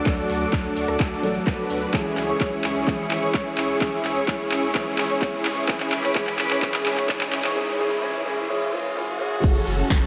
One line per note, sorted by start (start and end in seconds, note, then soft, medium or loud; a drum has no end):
0.00 0.05 F#3 medium
0.00 0.06 A3 medium
0.00 0.07 D4 medium
0.00 0.07 A4 loud
0.00 1.90 A4 medium
0.00 1.90 D5 medium
0.00 1.90 F#5 medium
0.00 1.90 D6 medium
0.05 0.22 D2 medium
0.05 1.20 F#3 medium
0.05 1.20 A3 medium
0.05 0.39 D4 medium
0.05 1.21 D4 medium
0.05 0.39 F#4 medium
0.05 0.39 A4 loud
0.05 1.21 A4 medium
0.05 kick loud
0.05 clap medium
0.05 closed hi-hat soft
0.05 shaker soft
0.18 closed hi-hat soft
0.18 shaker soft
0.30 0.45 D2 medium
0.30 open hi-hat loud
0.30 shaker medium
0.41 0.62 D4 medium
0.41 0.62 F#4 medium
0.41 0.62 A4 medium
0.41 shaker soft
0.53 0.68 D2 medium
0.53 kick loud
0.53 clap medium
0.53 closed hi-hat soft
0.53 shaker soft
0.65 0.97 D4 medium
0.65 0.97 F#4 medium
0.65 0.97 A4 loud
0.65 closed hi-hat soft
0.65 shaker soft
0.77 0.84 D2 medium
0.77 open hi-hat loud
0.77 shaker medium
0.88 0.96 D2 medium
0.88 cross-stick medium
0.88 closed hi-hat soft
0.88 shaker soft
1.00 1.15 D2 medium
1.00 1.21 D4 loud
1.00 1.21 F#4 medium
1.00 1.21 A4 loud
1.00 kick loud
1.00 clap medium
1.00 closed hi-hat medium
1.00 shaker soft
1.12 closed hi-hat soft
1.12 shaker soft
1.22 1.39 A1 medium
1.22 1.90 F#3 medium
1.22 1.91 A3 medium
1.22 1.91 D4 medium
1.22 1.92 A4 medium
1.22 open hi-hat loud
1.22 shaker medium
1.35 closed hi-hat soft
1.35 shaker soft
1.47 1.55 D2 loud
1.47 1.91 D4 medium
1.47 1.91 F#4 medium
1.47 1.91 B4 medium
1.47 kick loud
1.47 cross-stick medium
1.47 clap medium
1.47 closed hi-hat medium
1.47 shaker soft
1.59 closed hi-hat soft
1.59 shaker soft
1.70 1.86 D2 medium
1.70 open hi-hat loud
1.70 shaker medium
1.82 closed hi-hat soft
1.82 shaker soft
1.93 2.09 C#2 loud
1.93 2.84 E3 medium
1.93 2.85 G#3 medium
1.93 2.26 C#4 medium
1.93 2.85 C#4 medium
1.93 2.26 E4 medium
1.93 2.26 G#4 medium
1.93 7.52 G#4 medium
1.93 2.85 G#4 medium
1.93 5.65 C#5 medium
1.93 5.65 E5 medium
1.93 5.65 C#6 loud
1.93 kick loud
1.93 clap medium
1.93 closed hi-hat soft
1.93 riser medium
1.93 shaker soft
2.05 closed hi-hat soft
2.05 shaker soft
2.17 2.33 C#2 loud
2.17 clap medium
2.17 open hi-hat loud
2.17 shaker medium
2.29 2.50 C#4 medium
2.29 2.50 E4 medium
2.29 2.50 G#4 medium
2.29 2.36 C#5 medium
2.29 closed hi-hat soft
2.29 shaker soft
2.41 2.56 C#2 medium
2.41 2.48 C#5 medium
2.41 kick loud
2.41 clap medium
2.41 closed hi-hat soft
2.41 shaker soft
2.52 2.85 C#4 medium
2.52 2.85 E4 medium
2.52 2.85 G#4 medium
2.52 closed hi-hat soft
2.52 shaker soft
2.64 2.72 C#2 medium
2.64 clap medium
2.64 open hi-hat loud
2.64 shaker medium
2.76 2.84 C#2 medium
2.76 closed hi-hat soft
2.76 shaker soft
2.87 3.03 C#2 medium
2.87 3.78 E3 medium
2.87 3.78 G#3 medium
2.87 3.79 C#4 medium
2.87 3.79 G#4 medium
2.87 kick loud
2.87 clap medium
2.87 closed hi-hat soft
2.87 shaker soft
2.99 closed hi-hat soft
2.99 shaker soft
3.11 3.26 G#1 medium
3.11 clap medium
3.11 open hi-hat loud
3.11 shaker medium
3.23 3.43 C#4 medium
3.23 3.43 E4 medium
3.23 3.43 G#4 medium
3.23 3.30 C#5 medium
3.23 closed hi-hat soft
3.23 shaker soft
3.34 3.42 C#2 medium
3.34 3.42 C#5 medium
3.34 kick loud
3.34 clap medium
3.34 closed hi-hat medium
3.34 shaker soft
3.46 3.78 C#4 medium
3.46 3.78 E4 medium
3.46 3.78 G#4 medium
3.46 closed hi-hat soft
3.46 shaker soft
3.58 3.73 C#2 medium
3.58 clap medium
3.58 open hi-hat loud
3.58 shaker medium
3.70 closed hi-hat soft
3.70 shaker soft
3.80 3.97 C#2 medium
3.80 4.72 E3 medium
3.80 4.72 G#3 medium
3.80 4.14 C#4 medium
3.80 4.73 C#4 medium
3.80 4.14 E4 medium
3.80 4.14 G#4 medium
3.80 4.73 G#4 loud
3.80 kick loud
3.80 clap medium
3.80 closed hi-hat soft
3.80 shaker soft
3.93 closed hi-hat soft
3.93 shaker soft
4.05 4.20 C#2 medium
4.05 clap medium
4.05 open hi-hat loud
4.05 shaker medium
4.16 4.37 C#4 medium
4.16 4.37 E4 medium
4.16 4.37 G#4 medium
4.16 4.24 C#5 medium
4.16 closed hi-hat medium
4.16 shaker soft
4.28 4.43 C#2 medium
4.28 4.36 C#5 medium
4.28 kick loud
4.28 clap medium
4.28 closed hi-hat medium
4.28 shaker soft
4.40 4.72 C#4 medium
4.40 4.72 E4 medium
4.40 4.72 G#4 medium
4.40 closed hi-hat soft
4.40 shaker soft
4.52 4.59 C#2 medium
4.52 clap medium
4.52 open hi-hat loud
4.52 shaker medium
4.63 4.71 C#2 medium
4.63 closed hi-hat medium
4.63 shaker soft
4.74 4.90 C#2 medium
4.74 5.65 E3 medium
4.74 5.66 G#3 medium
4.74 5.07 C#4 loud
4.74 5.66 C#4 medium
4.74 5.07 E4 medium
4.74 5.07 G#4 loud
4.74 5.67 G#4 loud
4.74 kick loud
4.74 clap medium
4.74 closed hi-hat medium
4.74 shaker soft
4.87 closed hi-hat soft
4.87 shaker soft
4.98 5.14 G#1 medium
4.98 clap medium
4.98 open hi-hat loud
4.98 shaker medium
5.10 5.31 C#4 medium
5.10 5.31 E4 medium
5.10 5.31 G#4 medium
5.10 5.18 C#5 medium
5.10 closed hi-hat medium
5.10 shaker soft
5.22 5.30 C#2 loud
5.22 5.29 C#5 medium
5.22 kick loud
5.22 clap medium
5.22 closed hi-hat medium
5.22 shaker soft
5.33 5.66 C#4 medium
5.33 5.66 E4 medium
5.33 5.66 G#4 medium
5.33 closed hi-hat soft
5.33 shaker soft
5.45 5.61 C#2 medium
5.45 clap medium
5.45 open hi-hat loud
5.45 shaker medium
5.57 closed hi-hat medium
5.57 shaker soft
5.67 5.84 G#1 loud
5.67 6.13 E3 medium
5.67 6.14 G#3 medium
5.67 6.01 C#4 medium
5.67 6.14 C#4 medium
5.67 6.01 G#4 loud
5.67 6.14 G#4 loud
5.67 7.55 B4 medium
5.67 7.54 B5 loud
5.67 7.54 D6 medium
5.67 kick loud
5.67 clap medium
5.67 closed hi-hat medium
5.67 shaker soft
5.80 clap medium
5.80 closed hi-hat soft
5.80 shaker soft
5.92 6.08 G#1 loud
5.92 clap medium
5.92 open hi-hat loud
5.92 shaker medium
6.04 6.14 C#4 medium
6.04 6.14 E4 medium
6.04 6.14 G#4 medium
6.04 6.11 C#5 medium
6.04 clap medium
6.04 closed hi-hat medium
6.04 shaker soft
6.14 6.31 G#1 medium
6.14 6.60 E3 medium
6.14 6.60 G#3 medium
6.14 6.48 C#4 medium
6.14 6.61 C#4 medium
6.14 6.48 E4 medium
6.14 6.48 G#4 loud
6.14 6.61 G#4 loud
6.14 kick loud
6.14 clap medium
6.14 closed hi-hat medium
6.14 shaker soft
6.27 clap medium
6.27 closed hi-hat soft
6.27 shaker soft
6.39 6.47 G#1 medium
6.39 clap loud
6.39 open hi-hat loud
6.39 shaker medium
6.51 6.59 G#1 medium
6.51 6.61 C#4 medium
6.51 6.61 E4 medium
6.51 6.61 G#4 medium
6.51 6.58 C#5 medium
6.51 clap medium
6.51 closed hi-hat medium
6.51 shaker soft
6.61 6.78 G#1 medium
6.61 7.06 E3 loud
6.61 7.07 G#3 medium
6.61 6.95 C#4 loud
6.61 7.08 C#4 medium
6.61 6.95 E4 medium
6.61 6.95 G#4 loud
6.61 7.08 G#4 loud
6.61 kick loud
6.61 clap loud
6.61 closed hi-hat medium
6.61 shaker soft
6.74 clap medium
6.74 closed hi-hat soft
6.74 shaker soft
6.86 7.01 D2 medium
6.86 clap loud
6.86 open hi-hat loud
6.86 shaker medium
6.97 7.08 C#4 medium
6.97 7.08 E4 medium
6.97 7.08 G#4 medium
6.97 7.05 C#5 medium
6.97 clap medium
6.97 closed hi-hat medium
6.97 shaker soft
7.08 7.17 G#1 loud
7.08 7.54 E3 medium
7.08 7.54 G#3 medium
7.08 7.42 C#4 medium
7.08 7.55 C#4 medium
7.08 7.42 E4 medium
7.08 7.42 G#4 loud
7.08 7.55 G#4 loud
7.08 kick loud
7.08 clap loud
7.08 closed hi-hat medium
7.08 shaker soft
7.21 clap medium
7.21 closed hi-hat soft
7.21 shaker soft
7.33 7.48 G#1 medium
7.33 clap loud
7.33 open hi-hat loud
7.33 shaker medium
7.44 7.54 C#4 medium
7.44 7.54 E4 medium
7.44 7.54 G#4 medium
7.44 7.52 C#5 medium
7.44 clap medium
7.44 closed hi-hat medium
7.44 shaker soft
7.55 7.77 E3 medium
7.55 7.78 G#3 medium
7.55 7.78 C#4 medium
7.55 7.78 G#4 loud
7.78 8.00 E3 medium
7.78 8.01 G#3 medium
7.78 8.01 C#4 medium
7.78 8.02 G#4 loud
8.02 8.24 E3 loud
8.02 8.24 G#3 medium
8.02 8.25 C#4 medium
8.02 8.25 G#4 loud
8.25 8.47 E3 loud
8.25 8.48 G#3 medium
8.25 8.48 C#4 medium
8.25 8.49 G#4 loud
8.49 8.71 E3 loud
8.49 8.71 G#3 medium
8.49 8.72 C#4 medium
8.49 8.72 G#4 loud
8.72 8.94 E3 loud
8.72 8.95 G#3 medium
8.72 8.95 C#4 medium
8.72 8.96 G#4 loud
8.96 9.18 E3 loud
8.96 9.18 G#3 medium
8.96 9.19 C#4 medium
8.96 9.19 G#4 loud
9.19 9.41 E3 loud
9.19 9.42 G#3 medium
9.19 9.42 C#4 medium
9.19 9.43 G#4 loud
9.44 9.59 F#1 loud
9.44 9.76 C#4 medium
9.44 9.76 F#4 medium
9.44 9.76 A4 loud
9.44 10.06 A4 medium
9.44 10.06 C#5 medium
9.44 10.06 F#5 medium
9.44 10.06 C#6 loud
9.44 kick loud
9.44 closed hi-hat loud
9.44 crash loud
9.44 shaker soft
9.56 closed hi-hat soft
9.56 shaker soft
9.67 9.83 F#1 loud
9.67 open hi-hat loud
9.67 shaker medium
9.79 10.00 C#4 medium
9.79 10.00 F#4 medium
9.79 10.00 A4 medium
9.79 closed hi-hat soft
9.79 shaker soft
9.90 10.06 F#1 medium
9.90 kick loud
9.90 snare loud
9.90 closed hi-hat medium
9.90 shaker soft
10.02 10.06 C#4 medium
10.02 10.06 F#4 medium
10.02 10.06 A4 medium
10.02 closed hi-hat soft
10.02 shaker soft